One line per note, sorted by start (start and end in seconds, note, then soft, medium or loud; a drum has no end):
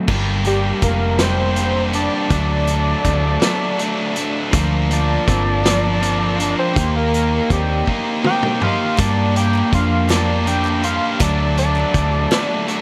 0.08 0.71 G1 loud
0.08 0.44 G3 medium
0.08 1.21 A#3 medium
0.08 1.20 D4 medium
0.08 1.18 G4 medium
0.08 kick loud
0.08 crash loud
0.45 1.18 G3 medium
0.45 0.82 G4 medium
0.45 0.82 D5 medium
0.45 closed hi-hat medium
0.82 2.08 F1 medium
0.82 1.55 A#3 medium
0.82 1.19 A#4 medium
0.82 1.19 F5 medium
0.82 kick medium
0.82 closed hi-hat medium
1.19 2.30 G3 medium
1.19 1.54 A#3 medium
1.19 1.57 D4 medium
1.19 1.58 G4 medium
1.19 1.93 C5 medium
1.19 1.93 G5 medium
1.19 snare loud
1.19 closed hi-hat medium
1.56 2.28 A#3 medium
1.56 1.96 D4 medium
1.56 1.91 G4 medium
1.56 closed hi-hat medium
1.92 2.32 D4 medium
1.92 2.28 G4 medium
1.92 2.30 D5 medium
1.92 2.30 A5 medium
1.92 closed hi-hat medium
2.29 2.93 D2 medium
2.29 3.42 F#3 medium
2.29 3.41 A3 medium
2.29 3.38 D4 medium
2.29 4.51 D5 loud
2.29 4.51 A5 loud
2.29 kick loud
2.29 closed hi-hat medium
2.67 3.41 F#3 medium
2.67 closed hi-hat medium
3.04 3.36 D2 medium
3.04 3.78 A3 medium
3.04 kick medium
3.04 closed hi-hat medium
3.40 3.76 F#3 medium
3.40 3.78 A3 medium
3.40 3.79 D4 medium
3.40 snare loud
3.40 closed hi-hat medium
3.77 4.50 F#3 medium
3.77 4.16 A3 medium
3.77 4.12 D4 medium
3.77 closed hi-hat medium
4.13 4.52 A3 medium
4.13 4.50 D4 medium
4.13 closed hi-hat medium
4.51 5.16 D2 loud
4.51 5.65 F3 medium
4.51 5.64 A#3 medium
4.51 5.62 D4 medium
4.51 kick loud
4.51 closed hi-hat medium
4.90 5.63 F3 medium
4.90 6.55 D5 loud
4.90 6.55 A5 loud
4.90 closed hi-hat medium
5.27 6.53 G1 medium
5.27 6.01 C4 medium
5.27 kick medium
5.27 closed hi-hat medium
5.63 5.99 F3 medium
5.63 6.02 A#3 medium
5.63 6.03 D4 medium
5.63 snare loud
5.63 closed hi-hat loud
6.01 6.73 F3 medium
6.01 6.40 A#3 medium
6.01 6.76 C4 medium
6.01 6.35 D4 medium
6.01 closed hi-hat medium
6.37 6.73 A#3 medium
6.37 6.73 D4 medium
6.37 closed hi-hat medium
6.59 6.94 C5 medium
6.59 6.94 G5 medium
6.73 7.39 D#2 medium
6.73 7.88 A#3 medium
6.73 7.86 D#4 medium
6.73 7.84 G4 medium
6.73 kick loud
6.73 closed hi-hat medium
6.96 7.49 A#4 medium
6.96 7.49 F5 medium
7.14 7.86 A#3 medium
7.14 closed hi-hat medium
7.50 7.82 D#2 medium
7.50 8.23 C4 medium
7.50 7.87 G4 medium
7.50 7.87 D5 medium
7.50 kick medium
7.50 closed hi-hat medium
7.85 8.22 A#3 medium
7.85 8.23 D#4 medium
7.85 8.25 G4 medium
7.85 kick medium
8.23 8.95 A#3 medium
8.23 8.98 C4 medium
8.23 8.62 D#4 medium
8.23 8.59 G4 medium
8.23 8.61 G5 loud
8.23 8.61 D6 loud
8.23 mid tom medium
8.43 mid tom medium
8.60 8.97 D#4 medium
8.60 8.95 G4 medium
8.60 8.98 F5 medium
8.60 8.98 C6 medium
8.60 floor tom medium
8.96 9.61 G2 loud
8.96 10.10 A#3 medium
8.96 10.09 D4 medium
8.96 10.06 G4 medium
8.96 9.35 D5 medium
8.96 9.35 A5 medium
8.96 kick loud
8.96 clap medium
8.96 closed hi-hat medium
9.35 10.09 A#3 medium
9.35 9.72 G5 loud
9.35 9.72 D6 loud
9.35 closed hi-hat medium
9.54 clap medium
9.72 10.97 F2 medium
9.72 10.46 D4 medium
9.72 10.09 F5 medium
9.72 10.09 C6 medium
9.72 kick medium
9.72 closed hi-hat medium
9.91 clap soft
10.08 10.43 A#3 medium
10.08 10.46 D4 medium
10.08 10.47 G4 medium
10.08 10.46 D5 medium
10.08 10.46 A5 medium
10.08 snare loud
10.08 clap medium
10.08 closed hi-hat loud
10.28 clap soft
10.45 11.17 A#3 medium
10.45 10.85 D4 medium
10.45 10.81 G4 medium
10.45 10.83 G5 medium
10.45 10.83 D6 medium
10.45 closed hi-hat medium
10.65 clap medium
10.82 11.22 D4 medium
10.82 11.17 G4 medium
10.82 11.20 F5 medium
10.82 11.20 C6 medium
10.82 closed hi-hat medium
11.19 11.83 D2 loud
11.19 12.33 F#3 medium
11.19 12.31 A3 medium
11.19 12.29 D4 medium
11.19 11.57 D5 medium
11.19 11.57 A5 medium
11.19 kick loud
11.19 clap loud
11.19 closed hi-hat loud
11.57 12.30 F#3 medium
11.57 12.81 D5 loud
11.57 12.81 A5 loud
11.57 closed hi-hat medium
11.76 clap medium
11.94 12.26 D2 medium
11.94 12.66 A3 medium
11.94 kick medium
11.94 closed hi-hat medium
12.13 clap soft
12.30 12.65 F#3 medium
12.30 12.67 A3 medium
12.30 12.69 D4 medium
12.30 snare loud
12.30 clap medium
12.30 closed hi-hat medium
12.51 clap soft
12.67 12.81 F#3 medium
12.67 12.81 A3 medium
12.67 12.81 D4 medium
12.67 closed hi-hat medium